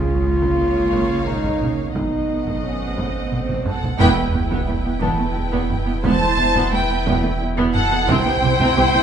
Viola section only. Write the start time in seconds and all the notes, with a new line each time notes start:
Already playing: A#3
1.95 A3
3.99 B3 E4
4.17 A3
4.33 B3
4.50 B3
4.68 A3
4.84 B3
5.01 B3
5.18 A3
5.52 B3
5.86 B3
6.03 B3
6.20 A3
6.38 B3
6.55 B3
6.73 A3
6.89 B3
7.07 B3
7.23 A3
7.57 B3
7.91 B3
8.08 C4 E4
8.26 B3
8.42 C4
8.60 C4
8.77 B3
8.94 C4